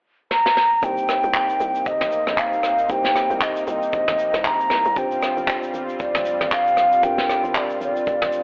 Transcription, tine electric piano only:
0.82 A#3 C4 D#4 G4 C5
2.88 A#3 C4 D#4 G4 C5
4.95 C4 D4 F4 G4 C5
7.02 C4 D4 F4 G4 A#4

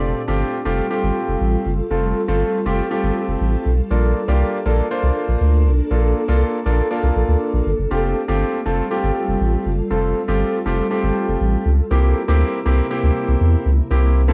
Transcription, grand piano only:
Already playing: A3 C4 F4 G4
0.28 A3 C4 F4 G4
0.65 A3 C4 F4 G4
0.90 A3 C4 F4 G4
1.91 A3 C4 F4 A4
2.28 A3 C4 F4 A4
2.66 A3 C4 F4 G4
2.91 A3 C4 F4 G4
3.91 A#3 D4 F4 A4
4.28 A#3 D4 F4 G4
4.66 A#3 D4 F4 A4
4.91 A#3 D4 F4 C5
5.91 A#3 D4 F4 A4
6.28 A#3 D4 F4 A4
6.66 A#3 D4 F4 A4
6.91 A#3 D4 F4 A4
7.91 A3 C4 F4 G4
8.28 A3 C4 F4 G4
8.66 A3 C4 F4 A4
8.91 A3 C4 F4 G4
9.90 A3 C4 F4 A4
10.28 A3 C4 F4 G4
10.66 A3 C4 F4 G4
10.91 A3 C4 F4 G4
11.91 A#3 C4 E4 G4
12.28 A#3 C4 E4 G4
12.65 A#3 C4 E4 G4
12.90 A#3 C4 E4 G4
13.91 A#3 C4 E4 G4
14.28 A#3 C4 E4 A4

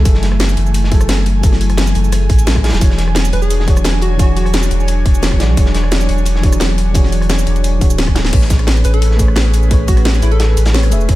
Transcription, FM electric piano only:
Already playing: F#3 E4 G#4 A4
0.03 F#3 E4 G#4
0.08 A4
0.89 F#3 E4 G#4
0.94 A4
1.41 F#3 E4 G#4
1.46 A4
2.46 F#3 E4 G#4 A4
2.63 F#3 E4 G#4 A4
2.79 E3 D4 F#4 G#4
2.84 C#5
3.65 E3 D4 F#4 G#4
3.70 C#5
4.17 E3 D4 F#4 G#4
4.22 C#5
5.22 E3 D4 F#4 G#4 C#5
5.39 E3 D4 F#4 G#4 D5
5.55 E3 D4 F#4 G#4
5.60 C#5
6.41 E3 D4 F#4 G#4
6.46 C#5
6.93 E3 D4 F#4 G#4
6.98 C#5
7.79 E3 D4 F#4 G#4
7.84 C#5
8.30 A3 G#4 B4
8.35 C#5
9.17 A3 G#4 B4
9.22 C#5
9.68 A3 G#4 B4
9.73 C#5
10.73 A3 G#4 B4 C#5
10.90 A3 G#4 B4 E5
11.06 A3 G#4 B4
11.11 C#5

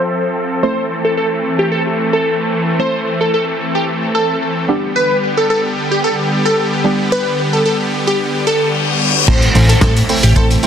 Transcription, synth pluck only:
0.63 A3 C4 E4 A4
2.79 A3 C4 E4 A4
4.68 G3 B3 D4 G4
6.84 G3 B3 D4 G4
9.28 A3 C4 E4 A4 C5
9.55 A3 C4 E4 A4 C5
9.82 A3 C4 E4 A4 C5
10.09 A3 C4 E4 A4 C5
10.36 A3 C4 E4 A4 C5
10.63 A3 C4 E4 A4 C5

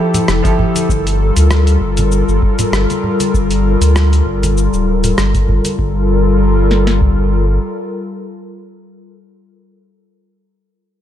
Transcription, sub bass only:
0.28 F1
0.89 G1
1.37 D2
1.81 G1
2.28 G1
2.72 G1
3.34 G1
3.81 D2
4.26 G1
4.73 D1
5.18 G1
5.79 G1

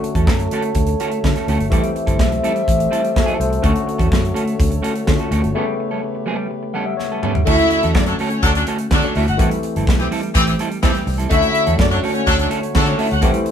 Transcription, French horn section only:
Already playing: A3 F#4 A4 C#5
1.74 G4 C5 E5
3.65 F#4 A4 C#5
5.56 G4 B4
11.32 D3 A3 F#4 C#5
13.23 E4 G4 C5

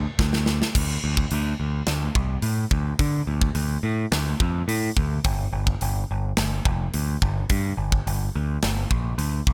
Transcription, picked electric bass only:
0.19 D2
0.75 D2
1.04 D2
1.32 D2
1.60 D2
1.87 D2
2.15 C2
2.42 A2
2.71 D2
2.99 D3
3.27 D2
3.55 D2
3.83 A2
4.12 D2
4.40 F2
4.68 A2
4.97 D2
5.25 G1
5.53 G1
5.82 G1
6.11 G1
6.38 G1
6.65 F1
6.94 D2
7.22 G1
7.50 G2
7.77 G1
8.07 G1
8.36 D2
8.63 G1
8.91 A#1
9.18 D2
9.47 C2

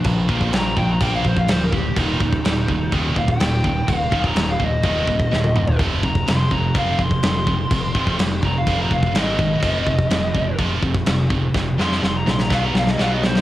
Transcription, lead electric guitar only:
0.55 A#5
0.78 G5
0.91 A#5
1.02 G5
1.15 F5
1.27 C5
1.39 F5
1.51 C5
1.63 A#4
1.74 G4
1.98 D#4
3.18 F5
3.30 G5
3.97 F5
4.26 A#5
4.50 F5
4.64 D#5
4.86 D#5
6.05 A#5
6.29 C6
6.53 A#5
6.77 F5
7.02 C6
7.26 C6
8.46 A#5
8.58 F5
8.81 A#5
8.93 F5
9.18 D#5
11.81 C6
12.05 C6
12.17 A#5
12.30 C6
12.41 A#5
12.53 F5
12.65 A#5
12.77 F5
12.91 D#5
13.01 F5
13.13 D#5
13.25 C5

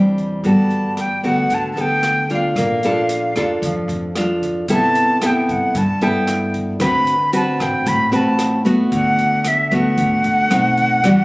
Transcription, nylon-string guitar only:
Already playing: E3 G3 C4 D4
0.44 G3 B3 F#4 A4
1.24 B3 F#4 A4
1.51 D3
1.77 B3 A4
2.30 D4 F4 A4
2.57 A#3
2.84 D4 F4 A4
3.37 D4 F4 A4
3.64 F3
4.17 D4 F4 A4
4.69 C3 B3 E4 A4
5.22 B3 E4 A4
5.75 G2
6.02 B3 E4 A4
6.80 D3 C4 F#4 B4
7.33 C4 F#4 B4
7.86 A2
8.12 C4 F#4 B4
8.65 A3 B3 F#4
8.92 D3
9.71 A3 B3 F#4
9.98 D3
10.50 A3 C4 D#4
11.04 E3 G3 D4 F#4

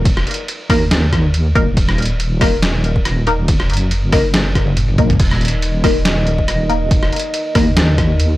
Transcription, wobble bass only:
Already playing: D#1
0.70 D#2
1.55 D#1
1.77 D#1
3.05 D#1
3.70 F#1
4.98 A#1
5.20 D#1
6.48 D#1
7.55 D#2

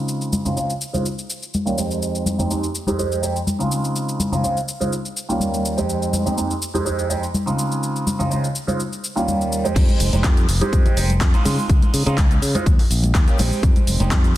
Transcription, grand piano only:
Already playing: C#3 G#3 C4 D#4 F4
0.45 C#3 G#3 C4 D#4 F4
0.56 C#3 G#3 C4 D#4 F4
0.93 C#3 G#3 C4 D#4 F4
1.66 D#2 G3 A#3 C#4 F4
1.77 F2 G#3 C4 D#4 G4
2.38 F2 G#3 C4 D#4 G4
2.50 F2 G#3 C4 D#4 G4
2.87 F2 G#3 C4 D#4 G4
2.98 F2 G#3 C4 D#4 G4
3.22 F2 G#3 C4 D#4 G4
3.59 C#3 G#3 C4 D#4 F4
4.32 C#3 G#3 C4 D#4 F4
4.43 C#3 G#3 C4 D#4 F4
4.80 C#3 G#3 C4 D#4 F4
5.29 D#2 G3 A#3 C#4 F4
5.77 F2 G#3 C4 D#4 G4
6.25 F2 G#3 C4 D#4 G4
6.37 F2 G#3 C4 D#4 G4
6.74 F2 G#3 C4 D#4 G4
6.85 F2 G#3 C4 D#4 G4
7.09 F2 G#3 C4 D#4 G4
7.46 C#3 G#3 C4 D#4 F4
8.19 C#3 G#3 C4 D#4 F4
8.30 C#3 G#3 C4 D#4 F4
8.67 C#3 G#3 C4 D#4 F4
9.16 D#2 G3 A#3 C#4 F4
9.64 F2 G#3 C4 D#4 G4
9.76 C4 D#4 G4
10.13 G#3 C4 D#4 G4
10.24 G#3 C4
10.61 G#3 C4 D#4 G4
10.72 G#3 C4 D#4 G4
10.97 G#3 C4 D#4 G4
11.33 G#3 C4 D#4 F4
12.06 G#3 C4 D#4 F4
12.17 G#3 D#4
12.54 G#3 C4 D#4 F4
13.27 A#3 C#4 F4 G4
13.38 G#3 C4 D#4 G4
14.00 G#3 C4 D#4 G4
14.11 G#3 C4 D#4 G4

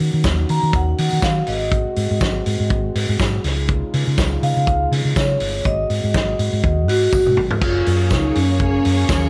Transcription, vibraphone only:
0.50 A#5
0.76 F#5
1.23 F5
1.48 D#5
4.43 F5
5.17 C#5
5.66 D#5
6.88 F#4
7.63 F4
8.12 D#4
8.35 C#4

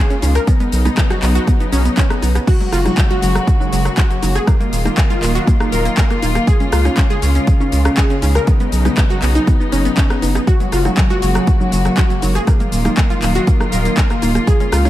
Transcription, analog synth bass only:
0.22 C#2
0.72 B1
1.22 B1
1.72 B1
2.22 B1
2.72 F#1
3.22 F#1
3.72 F#1
4.23 F#1
4.72 D#1
5.22 D#1
5.72 D#1
6.22 D#1
6.72 C#2
7.22 C#2
7.72 C#2
8.23 C#2
8.72 B1
9.22 B1
9.72 F#1
10.22 F#1
10.72 F#1
11.22 F#1
11.73 F#1
12.22 F#1
12.72 D#1
13.22 D#1
13.72 D#1
14.22 D#1
14.72 C#2

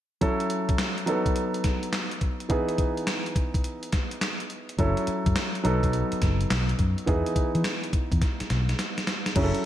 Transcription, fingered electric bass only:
4.79 F#1
5.08 muted fingered electric bass stroke
5.26 F#2
5.65 B1
6.13 muted fingered electric bass stroke
6.22 F#1
6.51 B1
6.79 F#2
7.08 E2
7.36 muted fingered electric bass stroke
7.55 E3
7.93 muted fingered electric bass stroke
8.12 E2
8.41 muted fingered electric bass stroke
8.51 B1
9.36 F#1

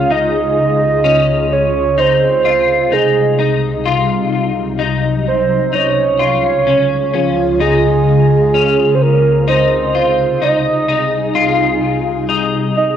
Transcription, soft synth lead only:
Already playing: F5
0.12 D#5
1.53 C#5
1.99 C5
2.93 G#4
5.28 C5
5.75 C#5
7.15 F4
7.61 G#4
8.95 C5
9.02 A#4
9.49 C5
10.43 D#5
12.77 D#5

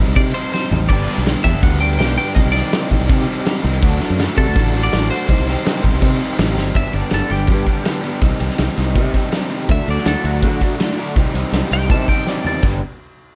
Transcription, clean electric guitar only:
0.16 D5
0.34 C5
0.54 C5
0.89 D5
1.44 E5
1.63 F#5
1.80 G5
1.99 G5
2.18 G5
2.35 D#5
2.52 D5
4.38 A4
4.84 D5
5.11 C5
6.76 E5
6.94 D5
7.14 A4
7.31 G4
9.71 E5
9.91 D5
10.08 A4
10.27 F#4
11.73 G5
11.91 A5
12.09 G5
12.29 D5
12.47 D5

